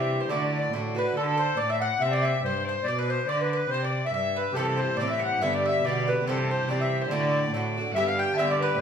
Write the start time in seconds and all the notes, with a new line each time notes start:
Already playing: G2 C3 E3 C4 G4 D5 E5
0.00 E5
0.20 C5
0.29 A2 D3 A3 F#4 D5
0.46 D5
0.56 D5 E5
0.73 A2 D3 A3 F#4
0.95 D3 A3 F#4 B4
1.16 D3 A4
1.24 A4 B4
1.37 C5
1.57 A2 D5
1.70 E5
1.81 F#5
2.01 C3 E5
2.11 D5
2.21 E5
2.26 E5
2.44 G2 C5
2.65 C5 D5
2.69 C5
2.84 B2 D5 E5
2.88 D5
2.98 B4
3.09 C5
3.28 D3 D5 E5
3.37 B4 E5
3.41 B4
3.49 B4 D5
3.70 C3 C5
3.74 C5
3.83 D5
4.05 E5
4.13 G2 E5
4.36 B4
4.53 G2 C3 G4 A4
4.57 E3 C4 G4 A4
4.65 A4
4.77 C5
4.97 G2 A2 E3 D5
5.02 C4 G4
5.08 E5
5.19 F#5
5.23 F#5
5.41 G2 D3 B3 G4 E5
5.53 D5
5.63 E5 F#5
5.83 G2 B2 D3 D5
5.87 B3 G4
6.08 D3 B3 G4 B4
6.25 G2 C3 E3 C4 A4
6.30 G4
6.36 A4 B4
6.50 C5
6.67 G2 C3 E3 C4 D5
6.72 G4
6.80 E5
7.01 C5
7.10 A2 D3 A3 F#4 D5
7.23 D5 E5
7.37 C5 D5
7.52 A2 D3 A3
7.56 F#4
7.77 D3 A3 F#4
7.92 G2 E5 F#5
7.96 G2 D3 B3 G4 E5
8.07 F5
8.19 G5
8.34 D3 E5 A5
8.38 G2 D3 B3 G4 E5
8.50 D5
8.61 B4
8.75 C5 E5